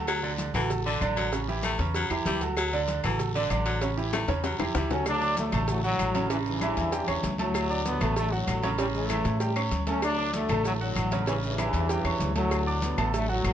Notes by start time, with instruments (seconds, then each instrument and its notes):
Already playing: upright bass D2, grand piano F#3 F#4 A4
0.07 baritone saxophone F#3, cowbell, low agogo, long guiro, claves, maracas
0.23 grand piano D3 D4 D5, high conga, low agogo, maracas
0.38 cowbell, high conga, low timbale, short guiro, maracas
0.54 upright bass A1, baritone saxophone E3, grand piano F#3 F#4 A4, cowbell, high conga, low conga, low agogo, short guiro, claves, maracas
0.70 cowbell, high conga, low conga, low agogo, long guiro, maracas
0.86 baritone saxophone D3, grand piano D3 D4 D5, high conga, maracas
1.01 upright bass A1, grand piano D3 D4 D5, cowbell, high conga, low timbale, low agogo, short guiro, claves, maracas
1.17 baritone saxophone F#3, cowbell, high conga, low agogo, short guiro, maracas
1.32 grand piano C#3 C#4 C#5, cowbell, long guiro, maracas
1.48 grand piano E3 E4 G4, high conga, low agogo, maracas
1.63 baritone saxophone A3, cowbell, high conga, low timbale, low agogo, short guiro, claves, maracas
1.79 upright bass E2, grand piano C#3 C#4 C#5, cowbell, short guiro, maracas
1.94 baritone saxophone F#3, cowbell, high conga, low agogo, long guiro, maracas
2.10 upright bass E2, grand piano E3 E4 G4, cowbell, high conga, low agogo, claves, maracas
2.25 upright bass D2, grand piano E3 E4 G4, baritone saxophone G3, cowbell, high conga, low timbale, short guiro, maracas
2.41 grand piano F#3 F#4 A4, cowbell, high conga, low agogo, short guiro, maracas
2.56 baritone saxophone F#3, cowbell, high conga, low agogo, long guiro, claves, maracas
2.72 grand piano D3 D4 D5, high conga, low agogo, maracas
2.88 cowbell, high conga, low timbale, short guiro, maracas
3.03 upright bass A1, baritone saxophone E3, grand piano F#3 F#4 A4, cowbell, high conga, low conga, low agogo, short guiro, claves, maracas
3.19 cowbell, high conga, low conga, low agogo, long guiro, maracas
3.35 baritone saxophone D3, grand piano D3 D4 D5, high conga, maracas
3.50 upright bass A1, grand piano D3 D4 D5, cowbell, high conga, low timbale, low agogo, short guiro, claves, maracas
3.66 baritone saxophone F#3, cowbell, low agogo, short guiro, maracas
3.81 grand piano C#3 C#4 C#5, cowbell, long guiro, maracas
3.97 grand piano E3 E4 G4, high conga, low agogo, maracas
4.12 baritone saxophone A3, cowbell, high bongo, high conga, high timbale, low agogo, short guiro, claves, maracas
4.28 upright bass E2, grand piano C#3 C#4 C#5, cowbell, low bongo, short guiro, maracas
4.44 baritone saxophone F#3, cowbell, high bongo, high conga, low agogo, long guiro, maracas
4.59 upright bass E2, grand piano E3 E4 G4, cowbell, low bongo, high conga, low timbale, low agogo, claves, maracas
4.74 upright bass D2, grand piano E3 E4 G4, baritone saxophone G3, cowbell, low bongo, low conga, low timbale, short guiro, maracas
4.90 grand piano F#3 F#4 A4, trombone section C#4, cowbell, low bongo, low conga, low timbale, low agogo, short guiro, maracas
5.06 trombone section F#3 A3 D4, cowbell, high conga, low agogo, long guiro, claves, maracas
5.21 grand piano D4 D5 D6, high conga, low agogo, maracas
5.37 trombone section D3 F#3 A3, cowbell, high conga, low timbale, short guiro, maracas
5.52 upright bass A1, grand piano A3 A4 A5, cowbell, high conga, low conga, low agogo, short guiro, claves, maracas
5.67 trombone section A2 D3 F#3, cowbell, high conga, low conga, low agogo, long guiro, maracas
5.83 trombone section A2 D3 F#3, grand piano F#3 F#4 F#5, high conga, maracas
5.99 upright bass A1, cowbell, high conga, low timbale, low agogo, short guiro, claves, maracas
6.14 grand piano C#3 C#4 C#5, cowbell, high conga, low agogo, short guiro, maracas
6.30 trombone section G2 C#3 E3, grand piano C#3 C#4 C#5, cowbell, high conga, long guiro, maracas
6.46 trombone section G2 C#3 E3, high conga, low agogo, maracas
6.61 grand piano E3 E4 E5, cowbell, high conga, low timbale, low agogo, short guiro, claves, maracas
6.77 upright bass E2, cowbell, short guiro, maracas
6.92 grand piano G3 G4 G5, cowbell, high conga, low agogo, long guiro, maracas
7.08 upright bass E2, grand piano C#4 C#5 C#6, cowbell, high conga, low agogo, claves, maracas
7.23 upright bass D2, cowbell, high conga, low timbale, short guiro, maracas
7.38 trombone section A2 D3 F#3, grand piano A3 A4 A5, cowbell, high conga, low agogo, short guiro, maracas
7.54 cowbell, high conga, low agogo, long guiro, claves, maracas
7.70 grand piano D4 D5 D6, low agogo, maracas
7.85 trombone section D3 F#3 B3, cowbell, high conga, low timbale, short guiro, maracas
8.01 upright bass A1, grand piano A3 A4 A5, cowbell, high conga, low conga, low agogo, short guiro, claves, maracas
8.16 trombone section D3 F#3 A3, cowbell, low agogo, long guiro, maracas
8.32 trombone section A2 D3 F#3, grand piano F#3 F#4 F#5, high conga, maracas
8.47 upright bass A1, cowbell, high conga, low timbale, low agogo, short guiro, claves, maracas
8.63 grand piano C#3 C#4 C#5, trombone section F#3, cowbell, high conga, low agogo, short guiro, maracas
8.78 grand piano C#3 C#4 C#5, trombone section C#3 E3 G3, cowbell, long guiro, maracas
8.94 trombone section C#3 E3 A3, high conga, low agogo, maracas
9.09 grand piano E3 E4 E5, cowbell, high conga, low timbale, low agogo, short guiro, claves, maracas
9.24 upright bass A2, cowbell, short guiro, maracas
9.40 grand piano G3 G4 G5, cowbell, high conga, low agogo, long guiro, maracas
9.56 grand piano C#4 C#5 C#6, cowbell, high conga, high timbale, low agogo, claves, maracas
9.71 upright bass D2, cowbell, high conga, short guiro, maracas
9.87 grand piano A3 A4 A5, trombone section C#4, cowbell, high conga, low timbale, low agogo, short guiro, maracas
10.02 trombone section F#3 A3 D4, cowbell, high conga, low agogo, long guiro, claves, maracas
10.18 grand piano D4 D5 D6, high conga, low agogo, maracas
10.33 trombone section D3 F#3 A3, cowbell, high conga, low timbale, short guiro, maracas
10.49 upright bass A1, grand piano A3 A4 A5, cowbell, high conga, low conga, low agogo, short guiro, claves, maracas
10.65 trombone section A2 D3 F#3, cowbell, high conga, low agogo, long guiro, maracas
10.80 trombone section A2 D3 F#3, grand piano F#3 F#4 F#5, high conga, maracas
10.96 upright bass A1, cowbell, high conga, low timbale, low agogo, short guiro, claves, maracas
11.11 grand piano C#3 C#4 C#5, cowbell, high conga, low agogo, short guiro, maracas
11.26 trombone section G2 C#3 E3, grand piano C#3 C#4 C#5, cowbell, long guiro, maracas
11.43 trombone section G2 C#3 E3, high conga, low agogo, maracas
11.57 grand piano E3 E4 E5, cowbell, high conga, low timbale, low agogo, short guiro, claves, maracas
11.73 upright bass E2, cowbell, short guiro, maracas
11.89 grand piano G3 G4 G5, cowbell, high conga, low agogo, long guiro, maracas
12.04 upright bass E2, grand piano C#4 C#5 C#6, cowbell, high conga, low agogo, claves, maracas
12.19 upright bass D2, cowbell, high conga, low timbale, short guiro, maracas
12.35 trombone section A2 D3 F#3, grand piano A3 A4 A5, cowbell, high conga, low agogo, short guiro, maracas
12.51 cowbell, low agogo, long guiro, claves, maracas
12.67 grand piano D4 D5 D6, high conga, low agogo, maracas
12.82 trombone section D3 F#3 B3, cowbell, high conga, low timbale, short guiro, maracas
12.98 upright bass A1, grand piano A3 A4 A5, cowbell, high conga, low conga, low agogo, short guiro, claves, maracas
13.13 trombone section D3 F#3 A3, cowbell, high conga, low agogo, long guiro, maracas
13.29 trombone section A2 D3 F#3, grand piano F#3 F#4 F#5, high conga, maracas
13.44 upright bass A1, cowbell, high conga, low timbale, low agogo, short guiro, claves, maracas